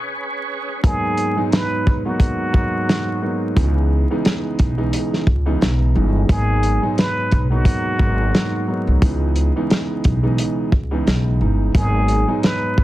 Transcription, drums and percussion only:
0.84 kick loud
0.84 closed hi-hat loud
1.17 closed hi-hat medium
1.52 snare loud
1.52 closed hi-hat medium
1.87 kick medium
2.20 kick loud
2.20 closed hi-hat medium
2.54 kick loud
2.89 snare loud
2.89 closed hi-hat medium
3.57 kick loud
3.57 closed hi-hat loud
4.25 snare loud
4.25 closed hi-hat medium
4.59 kick medium
4.59 closed hi-hat medium
4.93 closed hi-hat medium
5.14 snare soft
5.27 kick medium
5.62 snare loud
5.62 closed hi-hat medium
6.29 kick loud
6.29 closed hi-hat loud
6.63 closed hi-hat medium
6.98 snare loud
6.98 closed hi-hat medium
7.31 kick medium
7.31 closed hi-hat medium
7.65 kick loud
7.65 closed hi-hat medium
7.99 kick medium
8.35 snare loud
8.35 closed hi-hat medium
9.02 kick loud
9.02 closed hi-hat loud
9.36 closed hi-hat medium
9.70 snare loud
9.70 closed hi-hat medium
10.04 kick medium
10.04 closed hi-hat medium
10.38 closed hi-hat medium
10.72 kick loud
11.07 snare loud
11.07 closed hi-hat medium
11.75 kick loud
11.75 closed hi-hat loud
12.08 closed hi-hat medium
12.43 snare loud
12.43 closed hi-hat medium
12.78 kick medium

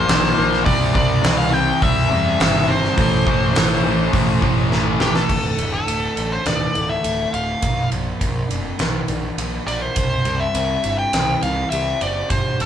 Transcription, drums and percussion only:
0.09 snare loud
0.09 open hi-hat medium
0.53 snare soft
0.66 kick loud
0.66 open hi-hat medium
0.95 kick loud
1.24 snare loud
1.24 open hi-hat medium
1.82 kick loud
1.82 open hi-hat medium
2.40 snare loud
2.40 open hi-hat medium
2.85 snare soft
2.98 kick loud
2.98 open hi-hat medium
3.27 kick loud
3.55 snare loud
3.55 open hi-hat medium
4.13 kick loud
4.13 open hi-hat medium
4.42 kick medium
4.72 snare medium
5.00 snare loud
5.15 snare medium
5.29 kick loud
5.29 crash loud
5.58 ride medium
5.88 ride medium
6.17 ride medium
6.46 snare loud
6.46 ride medium
6.75 ride medium
7.04 ride medium
7.34 ride medium
7.62 kick loud
7.62 ride medium
7.92 ride medium
8.21 kick medium
8.21 ride medium
8.51 ride medium
8.79 snare medium
8.79 ride medium
9.08 ride medium
9.38 ride medium
9.68 snare soft
9.68 ride medium
9.96 kick loud
9.96 ride medium
10.25 ride medium
10.55 ride medium
10.84 ride medium
11.13 snare medium
11.13 ride medium
11.43 snare soft
11.43 ride medium
11.72 ride medium
12.01 ride medium
12.30 kick loud
12.30 ride medium
12.60 ride medium

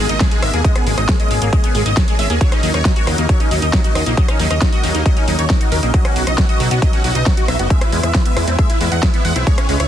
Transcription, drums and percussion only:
0.09 closed hi-hat medium
0.20 kick loud
0.20 snare loud
0.20 closed hi-hat medium
0.31 closed hi-hat medium
0.42 cross-stick medium
0.42 open hi-hat loud
0.53 closed hi-hat medium
0.64 kick loud
0.64 closed hi-hat medium
0.76 cross-stick medium
0.76 closed hi-hat medium
0.87 open hi-hat loud
0.98 cross-stick medium
0.98 closed hi-hat medium
1.09 kick loud
1.09 snare loud
1.09 closed hi-hat medium
1.20 closed hi-hat medium
1.31 open hi-hat medium
1.42 closed hi-hat medium
1.53 kick loud
1.53 closed hi-hat medium
1.64 closed hi-hat medium
1.75 open hi-hat loud
1.86 closed hi-hat medium
1.97 kick loud
1.97 snare loud
1.97 closed hi-hat medium
2.08 closed hi-hat medium
2.19 open hi-hat loud
2.30 closed hi-hat medium
2.41 kick loud
2.41 closed hi-hat medium
2.52 cross-stick medium
2.52 closed hi-hat medium
2.63 open hi-hat loud
2.74 cross-stick medium
2.74 closed hi-hat medium
2.85 kick loud
2.85 snare loud
2.85 closed hi-hat medium
2.96 closed hi-hat medium
3.07 cross-stick medium
3.07 open hi-hat loud
3.18 closed hi-hat medium
3.29 kick loud
3.29 closed hi-hat medium
3.40 closed hi-hat medium
3.51 open hi-hat loud
3.62 closed hi-hat medium
3.73 kick loud
3.73 snare loud
3.73 closed hi-hat medium
3.84 closed hi-hat medium
3.95 cross-stick medium
3.95 open hi-hat loud
4.06 closed hi-hat medium
4.17 kick loud
4.17 closed hi-hat medium
4.28 cross-stick medium
4.28 closed hi-hat medium
4.39 open hi-hat loud
4.51 cross-stick medium
4.51 closed hi-hat medium
4.61 kick loud
4.61 snare loud
4.61 closed hi-hat medium
4.73 closed hi-hat medium
4.84 open hi-hat medium
4.95 closed hi-hat medium
5.06 kick loud
5.06 closed hi-hat medium
5.17 closed hi-hat medium
5.28 open hi-hat loud
5.39 closed hi-hat medium
5.50 kick loud
5.50 snare loud
5.50 closed hi-hat medium
5.61 closed hi-hat medium
5.72 open hi-hat loud
5.83 closed hi-hat medium
5.94 kick loud
5.94 closed hi-hat medium
6.05 cross-stick medium
6.05 closed hi-hat medium
6.16 open hi-hat loud
6.27 cross-stick medium
6.27 closed hi-hat medium
6.38 kick loud
6.38 snare loud
6.38 closed hi-hat medium
6.49 closed hi-hat medium
6.60 open hi-hat medium
6.71 closed hi-hat medium
6.82 kick loud
6.82 closed hi-hat medium
6.93 closed hi-hat medium
7.04 open hi-hat loud
7.15 closed hi-hat medium
7.26 kick loud
7.26 snare loud
7.26 closed hi-hat medium
7.37 closed hi-hat medium
7.48 cross-stick medium
7.48 open hi-hat loud
7.59 closed hi-hat medium
7.70 kick loud
7.70 closed hi-hat medium
7.81 cross-stick medium
7.81 closed hi-hat medium
7.92 open hi-hat loud
8.03 cross-stick medium
8.03 closed hi-hat medium
8.14 kick loud
8.14 snare loud
8.14 closed hi-hat medium
8.26 closed hi-hat medium
8.37 cross-stick medium
8.37 open hi-hat medium
8.48 closed hi-hat medium
8.59 kick loud
8.59 closed hi-hat medium
8.70 closed hi-hat medium
8.81 open hi-hat loud
8.92 closed hi-hat medium
9.03 kick loud
9.03 snare loud
9.03 closed hi-hat medium
9.14 closed hi-hat medium
9.25 open hi-hat medium
9.36 closed hi-hat medium
9.47 kick loud
9.47 closed hi-hat medium
9.58 cross-stick medium
9.58 closed hi-hat medium
9.69 open hi-hat loud
9.80 cross-stick medium
9.80 closed hi-hat medium

